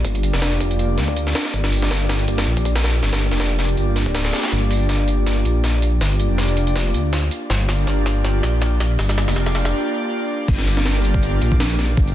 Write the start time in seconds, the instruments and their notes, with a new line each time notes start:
0.05 detuned saw bass G1, analog synth pad A#3 D4 F4 G4 D5, kick, closed hi-hat
0.15 closed hi-hat
0.23 closed hi-hat
0.33 detuned saw bass F1, snare
0.42 snare, closed hi-hat
0.52 closed hi-hat
0.61 kick, closed hi-hat
0.71 closed hi-hat
0.79 analog synth pad A#3 D4 F4 G4 D5, closed hi-hat
0.98 detuned saw bass D2, snare, closed hi-hat
1.08 kick
1.17 closed hi-hat
1.27 snare
1.35 snare, closed hi-hat
1.45 snare
1.54 detuned saw bass G1, analog synth pad A#3 D4 F4 G4 D5, kick, closed hi-hat
1.64 snare
1.72 open hi-hat
1.82 snare
1.91 snare, closed hi-hat
2.09 snare, closed hi-hat
2.20 closed hi-hat
2.28 analog synth pad A#3 D4 F4 G4 D5, kick, closed hi-hat
2.38 snare, closed hi-hat
2.47 detuned saw bass A#1, closed hi-hat
2.57 kick, closed hi-hat
2.65 kick, closed hi-hat
2.76 snare, closed hi-hat
2.84 snare, closed hi-hat
3.02 detuned saw bass G1, analog synth pad A#3 D4 F4 G4 D5, snare, closed hi-hat
3.13 snare, closed hi-hat
3.31 detuned saw bass F1, snare, closed hi-hat
3.40 snare, closed hi-hat
3.59 snare, closed hi-hat
3.69 closed hi-hat
3.77 detuned saw bass G1, analog synth pad A#3 D4 F4 G4 D5, closed hi-hat
3.96 analog synth pad A#3 D4 F4 G4 D5, snare, closed hi-hat
4.06 detuned saw bass D1, analog synth pad A#3 D4 F4 G4 D5, kick
4.15 snare, closed hi-hat
4.25 snare, closed hi-hat
4.33 snare, closed hi-hat
4.43 snare, closed hi-hat
4.52 detuned saw bass G1, analog synth pad A#3 D4 F4 G4 D5, snare, closed hi-hat
4.71 open hi-hat
4.89 snare, closed hi-hat
5.08 closed hi-hat
5.26 analog synth pad A#3 D4 F4 G4 D5, snare, closed hi-hat
5.45 detuned saw bass A#1, closed hi-hat
5.64 snare, closed hi-hat
5.82 closed hi-hat
6.01 detuned saw bass G1, analog synth pad A#3 D4 F4 G4 D5, snare, closed hi-hat
6.11 closed hi-hat
6.20 closed hi-hat
6.30 detuned saw bass F1
6.38 snare, closed hi-hat
6.48 closed hi-hat
6.57 closed hi-hat
6.67 closed hi-hat
6.76 analog synth pad A#3 D4 F4 G4 D5, snare, closed hi-hat
6.94 detuned saw bass D2, closed hi-hat
7.13 snare, closed hi-hat
7.31 closed hi-hat
7.50 detuned saw bass G1, analog synth pad A#3 D4 F4 G4 D5, snare, closed hi-hat
7.69 snare, open hi-hat
7.87 snare, closed hi-hat
8.06 snare, closed hi-hat
8.24 analog synth pad A#3 D4 F4 G4 D5, snare, closed hi-hat
8.43 detuned saw bass A#1, snare, closed hi-hat
8.62 snare, closed hi-hat
8.80 snare, closed hi-hat
8.99 detuned saw bass G1, analog synth pad A#3 D4 F4 G4 D5, snare, open hi-hat
9.09 snare, closed hi-hat
9.18 snare
9.28 detuned saw bass F1, snare, open hi-hat
9.36 snare, closed hi-hat
9.46 snare
9.55 snare, open hi-hat
9.65 snare, closed hi-hat
9.73 analog synth pad A#3 D4 F4 G4 D5
10.48 detuned saw bass G1, analog synth pad A#3 D4 F4 G4 D5, kick, closed hi-hat, crash
10.59 snare
10.67 open hi-hat
10.77 snare
10.86 snare, closed hi-hat
11.04 closed hi-hat
11.14 kick
11.23 analog synth pad A#3 D4 F4 G4 D5, closed hi-hat
11.41 detuned saw bass A#1, closed hi-hat
11.52 kick
11.60 snare, closed hi-hat
11.79 snare, closed hi-hat
11.97 detuned saw bass G1, analog synth pad A#3 D4 F4 G4 D5, kick, closed hi-hat
12.08 closed hi-hat